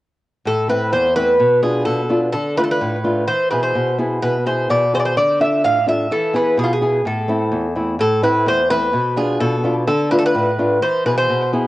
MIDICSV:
0, 0, Header, 1, 3, 480
1, 0, Start_track
1, 0, Key_signature, 0, "minor"
1, 0, Tempo, 471328
1, 460, Time_signature, 2, 2, 24, 8
1, 11886, End_track
2, 0, Start_track
2, 0, Title_t, "Bouzouki"
2, 0, Program_c, 0, 25
2, 479, Note_on_c, 0, 69, 82
2, 693, Note_off_c, 0, 69, 0
2, 708, Note_on_c, 0, 71, 81
2, 927, Note_off_c, 0, 71, 0
2, 945, Note_on_c, 0, 72, 82
2, 1176, Note_off_c, 0, 72, 0
2, 1180, Note_on_c, 0, 71, 99
2, 1652, Note_off_c, 0, 71, 0
2, 1656, Note_on_c, 0, 68, 69
2, 1880, Note_off_c, 0, 68, 0
2, 1887, Note_on_c, 0, 69, 84
2, 2227, Note_off_c, 0, 69, 0
2, 2368, Note_on_c, 0, 69, 84
2, 2617, Note_off_c, 0, 69, 0
2, 2621, Note_on_c, 0, 71, 83
2, 2681, Note_off_c, 0, 71, 0
2, 2685, Note_on_c, 0, 69, 68
2, 2757, Note_off_c, 0, 69, 0
2, 2761, Note_on_c, 0, 71, 81
2, 3332, Note_off_c, 0, 71, 0
2, 3336, Note_on_c, 0, 72, 87
2, 3560, Note_off_c, 0, 72, 0
2, 3570, Note_on_c, 0, 71, 70
2, 3691, Note_off_c, 0, 71, 0
2, 3695, Note_on_c, 0, 72, 68
2, 4031, Note_off_c, 0, 72, 0
2, 4302, Note_on_c, 0, 71, 80
2, 4523, Note_off_c, 0, 71, 0
2, 4549, Note_on_c, 0, 72, 66
2, 4785, Note_off_c, 0, 72, 0
2, 4789, Note_on_c, 0, 74, 81
2, 5007, Note_off_c, 0, 74, 0
2, 5039, Note_on_c, 0, 72, 91
2, 5083, Note_off_c, 0, 72, 0
2, 5087, Note_on_c, 0, 74, 70
2, 5141, Note_off_c, 0, 74, 0
2, 5145, Note_on_c, 0, 72, 77
2, 5253, Note_off_c, 0, 72, 0
2, 5266, Note_on_c, 0, 74, 84
2, 5485, Note_off_c, 0, 74, 0
2, 5510, Note_on_c, 0, 76, 71
2, 5727, Note_off_c, 0, 76, 0
2, 5748, Note_on_c, 0, 77, 92
2, 5967, Note_off_c, 0, 77, 0
2, 5995, Note_on_c, 0, 76, 95
2, 6210, Note_off_c, 0, 76, 0
2, 6233, Note_on_c, 0, 69, 82
2, 6449, Note_off_c, 0, 69, 0
2, 6476, Note_on_c, 0, 71, 75
2, 6691, Note_off_c, 0, 71, 0
2, 6711, Note_on_c, 0, 68, 71
2, 6760, Note_on_c, 0, 65, 59
2, 6778, Note_off_c, 0, 68, 0
2, 6836, Note_off_c, 0, 65, 0
2, 6854, Note_on_c, 0, 68, 68
2, 7194, Note_off_c, 0, 68, 0
2, 7199, Note_on_c, 0, 69, 65
2, 7868, Note_off_c, 0, 69, 0
2, 8154, Note_on_c, 0, 69, 85
2, 8370, Note_off_c, 0, 69, 0
2, 8387, Note_on_c, 0, 71, 81
2, 8630, Note_off_c, 0, 71, 0
2, 8638, Note_on_c, 0, 72, 91
2, 8852, Note_off_c, 0, 72, 0
2, 8863, Note_on_c, 0, 71, 105
2, 9307, Note_off_c, 0, 71, 0
2, 9342, Note_on_c, 0, 68, 69
2, 9574, Note_off_c, 0, 68, 0
2, 9578, Note_on_c, 0, 69, 76
2, 9913, Note_off_c, 0, 69, 0
2, 10057, Note_on_c, 0, 69, 78
2, 10294, Note_off_c, 0, 69, 0
2, 10298, Note_on_c, 0, 71, 73
2, 10365, Note_off_c, 0, 71, 0
2, 10375, Note_on_c, 0, 69, 80
2, 10443, Note_off_c, 0, 69, 0
2, 10448, Note_on_c, 0, 71, 85
2, 10981, Note_off_c, 0, 71, 0
2, 11024, Note_on_c, 0, 72, 86
2, 11244, Note_off_c, 0, 72, 0
2, 11263, Note_on_c, 0, 71, 77
2, 11378, Note_off_c, 0, 71, 0
2, 11382, Note_on_c, 0, 72, 80
2, 11715, Note_off_c, 0, 72, 0
2, 11886, End_track
3, 0, Start_track
3, 0, Title_t, "Nylon-string guitar"
3, 0, Program_c, 1, 24
3, 462, Note_on_c, 1, 45, 60
3, 695, Note_on_c, 1, 57, 50
3, 701, Note_on_c, 1, 60, 47
3, 703, Note_on_c, 1, 64, 52
3, 926, Note_off_c, 1, 45, 0
3, 940, Note_on_c, 1, 40, 62
3, 1081, Note_off_c, 1, 57, 0
3, 1083, Note_off_c, 1, 60, 0
3, 1085, Note_off_c, 1, 64, 0
3, 1184, Note_on_c, 1, 57, 44
3, 1189, Note_on_c, 1, 60, 44
3, 1190, Note_on_c, 1, 64, 46
3, 1375, Note_off_c, 1, 57, 0
3, 1375, Note_off_c, 1, 60, 0
3, 1378, Note_off_c, 1, 64, 0
3, 1405, Note_off_c, 1, 40, 0
3, 1422, Note_on_c, 1, 47, 62
3, 1655, Note_on_c, 1, 59, 46
3, 1660, Note_on_c, 1, 62, 45
3, 1662, Note_on_c, 1, 65, 53
3, 1886, Note_off_c, 1, 47, 0
3, 1901, Note_on_c, 1, 47, 67
3, 2041, Note_off_c, 1, 59, 0
3, 2041, Note_off_c, 1, 62, 0
3, 2045, Note_off_c, 1, 65, 0
3, 2132, Note_on_c, 1, 59, 44
3, 2138, Note_on_c, 1, 62, 41
3, 2142, Note_on_c, 1, 65, 50
3, 2327, Note_off_c, 1, 59, 0
3, 2330, Note_off_c, 1, 62, 0
3, 2333, Note_off_c, 1, 65, 0
3, 2365, Note_off_c, 1, 47, 0
3, 2378, Note_on_c, 1, 50, 62
3, 2618, Note_on_c, 1, 57, 52
3, 2625, Note_on_c, 1, 62, 49
3, 2630, Note_on_c, 1, 65, 57
3, 2843, Note_off_c, 1, 50, 0
3, 2862, Note_on_c, 1, 45, 64
3, 3002, Note_off_c, 1, 57, 0
3, 3005, Note_off_c, 1, 62, 0
3, 3009, Note_off_c, 1, 65, 0
3, 3095, Note_on_c, 1, 57, 46
3, 3101, Note_on_c, 1, 62, 45
3, 3101, Note_on_c, 1, 65, 55
3, 3288, Note_off_c, 1, 57, 0
3, 3290, Note_off_c, 1, 62, 0
3, 3292, Note_off_c, 1, 65, 0
3, 3325, Note_off_c, 1, 45, 0
3, 3340, Note_on_c, 1, 52, 61
3, 3581, Note_on_c, 1, 47, 49
3, 3583, Note_on_c, 1, 64, 45
3, 3588, Note_on_c, 1, 68, 55
3, 3804, Note_off_c, 1, 52, 0
3, 3808, Note_off_c, 1, 47, 0
3, 3820, Note_on_c, 1, 47, 64
3, 3963, Note_off_c, 1, 64, 0
3, 3967, Note_off_c, 1, 68, 0
3, 4056, Note_on_c, 1, 59, 50
3, 4061, Note_on_c, 1, 64, 43
3, 4065, Note_on_c, 1, 68, 46
3, 4284, Note_off_c, 1, 47, 0
3, 4303, Note_on_c, 1, 47, 61
3, 4441, Note_off_c, 1, 59, 0
3, 4444, Note_off_c, 1, 64, 0
3, 4445, Note_off_c, 1, 68, 0
3, 4541, Note_on_c, 1, 59, 47
3, 4545, Note_on_c, 1, 64, 44
3, 4549, Note_on_c, 1, 68, 57
3, 4766, Note_off_c, 1, 47, 0
3, 4782, Note_on_c, 1, 47, 65
3, 4924, Note_off_c, 1, 59, 0
3, 4925, Note_off_c, 1, 64, 0
3, 4929, Note_off_c, 1, 68, 0
3, 5023, Note_on_c, 1, 59, 46
3, 5027, Note_on_c, 1, 64, 39
3, 5029, Note_on_c, 1, 68, 51
3, 5213, Note_off_c, 1, 59, 0
3, 5213, Note_off_c, 1, 64, 0
3, 5217, Note_off_c, 1, 68, 0
3, 5245, Note_off_c, 1, 47, 0
3, 5260, Note_on_c, 1, 50, 60
3, 5497, Note_on_c, 1, 62, 54
3, 5505, Note_on_c, 1, 65, 46
3, 5509, Note_on_c, 1, 69, 51
3, 5724, Note_off_c, 1, 50, 0
3, 5744, Note_on_c, 1, 45, 61
3, 5881, Note_off_c, 1, 62, 0
3, 5886, Note_off_c, 1, 65, 0
3, 5887, Note_off_c, 1, 69, 0
3, 5974, Note_on_c, 1, 62, 45
3, 5982, Note_on_c, 1, 65, 44
3, 5986, Note_on_c, 1, 69, 53
3, 6168, Note_off_c, 1, 62, 0
3, 6172, Note_off_c, 1, 65, 0
3, 6175, Note_off_c, 1, 69, 0
3, 6206, Note_off_c, 1, 45, 0
3, 6226, Note_on_c, 1, 52, 65
3, 6451, Note_on_c, 1, 59, 52
3, 6458, Note_on_c, 1, 64, 45
3, 6461, Note_on_c, 1, 68, 58
3, 6688, Note_off_c, 1, 52, 0
3, 6695, Note_on_c, 1, 47, 68
3, 6838, Note_off_c, 1, 59, 0
3, 6842, Note_off_c, 1, 64, 0
3, 6843, Note_off_c, 1, 68, 0
3, 6937, Note_on_c, 1, 59, 46
3, 6941, Note_on_c, 1, 64, 43
3, 6948, Note_on_c, 1, 68, 54
3, 7130, Note_off_c, 1, 59, 0
3, 7132, Note_off_c, 1, 64, 0
3, 7135, Note_off_c, 1, 68, 0
3, 7162, Note_off_c, 1, 47, 0
3, 7183, Note_on_c, 1, 45, 58
3, 7416, Note_on_c, 1, 57, 52
3, 7422, Note_on_c, 1, 60, 45
3, 7428, Note_on_c, 1, 64, 56
3, 7646, Note_off_c, 1, 45, 0
3, 7655, Note_on_c, 1, 40, 64
3, 7801, Note_off_c, 1, 57, 0
3, 7805, Note_off_c, 1, 60, 0
3, 7806, Note_off_c, 1, 64, 0
3, 7898, Note_on_c, 1, 57, 47
3, 7902, Note_on_c, 1, 60, 38
3, 7907, Note_on_c, 1, 64, 47
3, 8090, Note_off_c, 1, 57, 0
3, 8094, Note_off_c, 1, 60, 0
3, 8094, Note_off_c, 1, 64, 0
3, 8122, Note_off_c, 1, 40, 0
3, 8139, Note_on_c, 1, 45, 69
3, 8374, Note_on_c, 1, 57, 54
3, 8378, Note_on_c, 1, 60, 49
3, 8384, Note_on_c, 1, 64, 59
3, 8604, Note_off_c, 1, 45, 0
3, 8617, Note_on_c, 1, 40, 69
3, 8761, Note_off_c, 1, 57, 0
3, 8761, Note_off_c, 1, 60, 0
3, 8766, Note_off_c, 1, 64, 0
3, 8858, Note_on_c, 1, 57, 51
3, 8863, Note_on_c, 1, 60, 45
3, 8868, Note_on_c, 1, 64, 47
3, 9050, Note_off_c, 1, 57, 0
3, 9054, Note_off_c, 1, 60, 0
3, 9054, Note_off_c, 1, 64, 0
3, 9084, Note_off_c, 1, 40, 0
3, 9095, Note_on_c, 1, 47, 62
3, 9332, Note_on_c, 1, 59, 53
3, 9340, Note_on_c, 1, 62, 49
3, 9345, Note_on_c, 1, 65, 58
3, 9562, Note_off_c, 1, 47, 0
3, 9578, Note_on_c, 1, 47, 64
3, 9719, Note_off_c, 1, 59, 0
3, 9724, Note_off_c, 1, 62, 0
3, 9725, Note_off_c, 1, 65, 0
3, 9814, Note_on_c, 1, 59, 50
3, 9821, Note_on_c, 1, 62, 42
3, 9825, Note_on_c, 1, 65, 48
3, 10009, Note_off_c, 1, 59, 0
3, 10011, Note_off_c, 1, 62, 0
3, 10014, Note_off_c, 1, 65, 0
3, 10044, Note_off_c, 1, 47, 0
3, 10057, Note_on_c, 1, 50, 69
3, 10301, Note_on_c, 1, 57, 53
3, 10305, Note_on_c, 1, 62, 48
3, 10310, Note_on_c, 1, 65, 59
3, 10523, Note_off_c, 1, 50, 0
3, 10540, Note_on_c, 1, 45, 69
3, 10684, Note_off_c, 1, 57, 0
3, 10686, Note_off_c, 1, 62, 0
3, 10689, Note_off_c, 1, 65, 0
3, 10780, Note_on_c, 1, 57, 47
3, 10786, Note_on_c, 1, 62, 44
3, 10790, Note_on_c, 1, 65, 52
3, 10972, Note_off_c, 1, 57, 0
3, 10974, Note_off_c, 1, 62, 0
3, 10977, Note_off_c, 1, 65, 0
3, 11005, Note_off_c, 1, 45, 0
3, 11021, Note_on_c, 1, 52, 62
3, 11257, Note_on_c, 1, 47, 50
3, 11261, Note_on_c, 1, 64, 46
3, 11268, Note_on_c, 1, 68, 56
3, 11485, Note_off_c, 1, 52, 0
3, 11493, Note_off_c, 1, 47, 0
3, 11505, Note_on_c, 1, 47, 67
3, 11643, Note_off_c, 1, 64, 0
3, 11648, Note_off_c, 1, 68, 0
3, 11740, Note_on_c, 1, 59, 46
3, 11746, Note_on_c, 1, 64, 43
3, 11746, Note_on_c, 1, 68, 53
3, 11886, Note_off_c, 1, 47, 0
3, 11886, Note_off_c, 1, 59, 0
3, 11886, Note_off_c, 1, 64, 0
3, 11886, Note_off_c, 1, 68, 0
3, 11886, End_track
0, 0, End_of_file